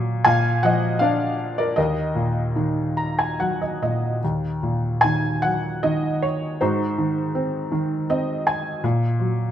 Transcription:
felt piano
Already playing: A#2 F#3
0.25 A#2 F5 G#5
0.63 F3 D#5 F#5
0.99 D4 D5 F5
1.58 A#4 D5
1.76 D#2 A#4 D#5
2.15 A#2
2.56 D#3
2.97 A#5
3.19 G#5
3.40 F#3 F#5
3.62 D#5
3.82 A#2 D#5
4.24 D#2
4.63 A#2
5.01 D#3 G#5
5.42 F#3 F#5
5.83 D#3 D#5
6.22 C#5
6.61 G#2 D#4 F#4 C5
6.98 D#3
7.35 C4
7.72 D#3
8.10 C4 D#5
8.47 G#5
8.84 A#2
9.20 F#3

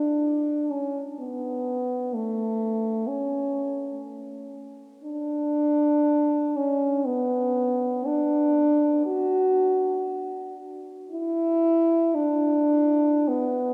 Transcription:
french horn
Already playing: D4
0.71 C#4
1.20 B3
2.15 A3
3.07 C#4
5.04 D4
6.56 C#4
7.05 B3
8.06 D4
9.05 F#4
11.11 E4
12.15 D4
13.28 B3

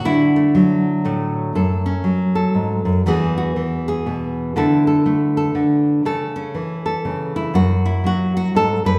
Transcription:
nylon-string guitar
Already playing: A3 F#4
0.05 D3 E4
0.36 A3
0.55 F#3
1.05 A2 A3
1.55 F#2 A4
1.86 C#4
2.04 F#3
2.35 A4
2.54 G#2
2.85 F#2
3.06 E2 E3 B3 F#4 G#4
3.38 F#4
3.56 E3
3.88 G#4
4.06 B2
4.56 D3 A3 E4 A4
4.87 A4
5.06 A3
5.37 A4
5.55 D3
6.05 C#3 A4
6.36 C#4
6.55 E3
6.86 A4
7.05 C#3
7.36 E4
7.54 F#2 F#4
7.85 E4
8.04 F#3 F#4
8.37 F#4
8.55 G#2 A4
8.85 F#2 B4

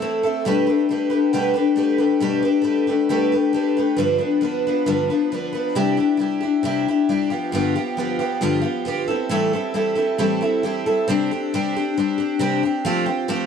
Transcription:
twelve-string acoustic guitar
0.00 A3 C4 E4 A4
0.23 A3 C4 E4 A4
0.45 B2 G3 A3 D4 G4 B4
0.67 A3 D4 G4 B4
0.89 A3 D4 G4 B4
1.10 A3 D4 G4 B4
1.33 B2 G3 A3 D4 G4 B4
1.54 A3 D4 G4 B4
1.76 A3 D4 G4 B4
1.98 A3 D4 G4 B4
2.20 B2 G3 A3 D4 G4 B4
2.43 A3 D4 G4 B4
2.62 A3 D4 G4 B4
2.87 A3 D4 G4 B4
3.09 B2 G3 A3 D4 G4 B4
3.32 A3 D4 G4 B4
3.53 A3 D4 G4 B4
3.77 A3 D4 G4 B4
3.97 G2 D3 F3 B3 D4 B4
4.18 F3 B3 D4 B4
4.41 F3 B3 D4 B4
4.67 F3 B3 D4 B4
4.86 G2 D3 F3 B3 D4 B4
5.10 F3 B3 D4 B4
5.32 F3 B3 D4 B4
5.53 F3 B3 D4 B4
5.75 C3 G3 D4 E4 G4
5.97 D4 E4 G4
6.17 G3 D4 E4
6.21 G4
6.41 D4 E4 G4
6.63 C3 G3 D4 E4 G4
6.88 D4 E4 G4
7.09 G3 D4 E4 G4
7.30 F3 B3 F4 G4
7.52 G2 D3 F3 B3 F4 G4
7.76 F3 B3 F4 G4
7.97 F3 B3 F4 G4
8.19 F3 B3 F4 G4
8.41 G2 D3 F3 B3 F4 G4
8.61 F3 B3 F4 G4
8.85 F3 B3 F4 G4
9.08 G3 C4 E4 A4
9.29 A2 E3 G3 C4 E4 A4
9.53 G3 C4 E4 A4
9.74 G3 C4 E4 A4
9.95 G3 C4 E4 A4
10.18 A2 E3 G3 C4 E4 A4
10.41 G3 C4 E4 A4
10.63 G3 C4 E4 A4
10.86 G3 C4 E4 A4
11.08 C3 G3 C4 D4 G4
11.31 C4 D4 G4
11.54 C3 G3 C4 D4 G4
11.76 C4 D4 G4
11.98 G3 C4 D4 G4
12.18 C4 D4 G4
12.39 C3 G3 C4 D4 G4
12.63 C4 D4 G4
12.85 F3 A3 C4 F4 G4
13.06 C4 F4 G4
13.28 F3 A3 C4 F4 G4

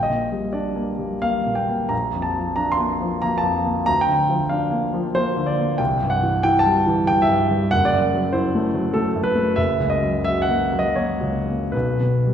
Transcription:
grand piano
Already playing: A#1
0.03 D#5
0.10 A#2
0.32 G3
0.53 D4 D5
0.76 A#3
0.99 G3
1.22 A#3 F5
1.46 A#2
1.55 G5
1.69 A#3
1.89 A#1 A#5
2.13 F2
2.22 A5
2.36 F3
2.56 D4 A#5
2.72 C6
2.79 A#3
3.01 F3
3.22 A#3 A#5
3.38 A5
3.43 F2
3.66 A#3
3.86 D2 A#5
4.01 G5
4.08 D3
4.29 F3
4.49 D4 F5
4.71 A#3
4.93 F3
5.15 A#3 C5
5.37 D3
5.46 D5
5.58 A#3
5.78 C2 G5
6.02 G2
6.10 F#5
6.23 E3
6.43 E4 G5
6.59 A5
6.66 G3
6.87 E3
7.07 G3 G5
7.22 E5
7.29 G2
7.51 G3
7.71 F#1 F#5
7.85 D5
7.93 F#2
8.14 F#3
8.33 E4 C5
8.55 A3
8.75 F#3
8.94 A3 A4
9.16 F#2
9.23 B4
9.35 A3
9.56 F#1 E5
9.79 C#2
9.90 D#5
10.02 F#3
10.24 F#4 E5
10.42 F#5
10.49 A#3
10.72 F#3
10.79 D#5
10.95 A#3 C#5
11.21 C#2
11.48 A#3
11.72 B1 B4
12.00 B2
12.27 G3

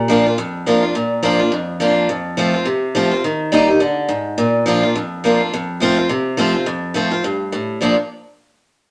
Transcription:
steel-string acoustic guitar
Already playing: A#2
0.08 F3 A#3 D4 F4
0.26 D4 F4
0.38 F2
0.66 F3 A#3 D4 F4
0.82 D4 F4
0.95 A#2
1.23 F3 A#3 D4 F4
1.39 D4 F4
1.52 F2
1.80 F3 A#3 D4 F4
2.09 F2
2.37 F3 A3 C4 F4
2.54 C4 F4
2.65 C3
2.95 F3 A3 C4 F4
3.11 C4 F4
3.24 D#3
3.52 G3 A#3 D#4 G4
3.68 D#4 G4
3.80 D3
4.08 G#2
4.38 A#2
4.66 F3 A#3 D4 F4
4.83 D4 F4
4.96 F2
5.24 F3 A#3 D4 F4
5.40 D4 F4
5.53 F2
5.80 F3 A3 C4 F4
5.97 C4 F4
6.09 C3
6.37 F3 A3 C4 F4
6.54 C4 F4
6.66 F2
6.94 F3 A3 C4 F4
7.11 C4 F4
7.24 G2
7.52 A2
7.81 A#2 F3 A#3 D4 F4

